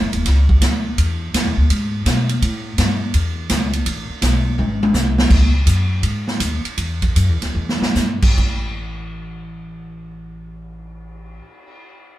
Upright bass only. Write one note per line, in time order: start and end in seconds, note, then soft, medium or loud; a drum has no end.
0.01 0.13 F#1 medium
0.13 0.25 D1 medium
0.25 0.61 C#2 medium
0.61 0.97 D2 loud
0.98 1.33 E2 medium
1.34 1.45 F#2 loud
1.45 1.56 E2 medium
1.57 1.69 D2 medium
1.70 2.05 G#2 medium
2.06 2.41 B2 loud
2.42 2.77 A2 medium
2.78 3.13 G2 loud
3.14 3.49 E2 medium
3.50 3.85 C#2 loud
3.86 4.08 A1 medium
4.09 muted upright bass stroke soft
4.22 4.57 B1 medium
4.58 4.93 G#1 loud
4.94 5.29 C2 loud
5.30 5.65 C#2 medium
5.66 6.02 F#2 medium
6.03 6.39 G#2 medium
6.40 6.63 D#2 loud
6.64 muted upright bass stroke soft
6.77 7.15 E2 medium
7.15 7.29 F#2 loud
7.29 7.41 E2 medium
7.42 7.54 D2 medium
7.55 7.79 E2 loud
7.81 muted upright bass stroke soft
7.95 8.36 G2 loud
8.37 11.39 A1 loud